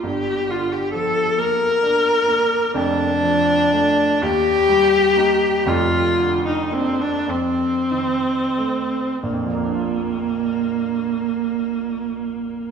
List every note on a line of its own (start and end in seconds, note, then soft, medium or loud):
0.03 2.71 G1 medium
0.03 2.72 G2 medium
0.03 0.52 G4 loud
0.49 1.21 D3 medium
0.49 0.74 F4 medium
0.72 0.93 G4 medium
0.93 1.66 F3 medium
0.93 1.40 A4 loud
1.37 2.11 A#3 medium
1.37 2.75 A#4 loud
1.83 2.56 D4 medium
2.28 2.75 A#3 medium
2.74 4.18 F1 medium
2.74 4.19 F2 medium
2.74 4.24 D4 loud
3.22 4.03 F3 medium
3.73 4.19 A3 medium
3.73 4.19 D4 medium
4.22 5.64 D#2 medium
4.22 5.70 G4 loud
4.69 5.47 G3 medium
5.16 5.63 A#3 medium
5.16 5.64 D#4 medium
5.66 7.25 F1 medium
5.66 7.26 F2 medium
5.66 6.46 F4 loud
6.18 7.06 D3 medium
6.46 6.75 D#4 medium
6.71 7.26 A#3 medium
6.71 7.03 C4 loud
6.71 7.26 D4 medium
7.01 7.31 D4 loud
7.28 9.19 F2 medium
7.28 9.22 C4 loud
7.91 8.99 D#3 medium
8.58 9.19 A3 soft
8.58 9.20 C4 medium
9.23 12.71 A#1 medium
9.23 12.71 A#3 medium
9.33 12.71 F2 medium
9.44 12.71 F3 medium
9.54 12.71 A#3 medium
9.65 12.71 D4 medium
9.75 12.71 F4 medium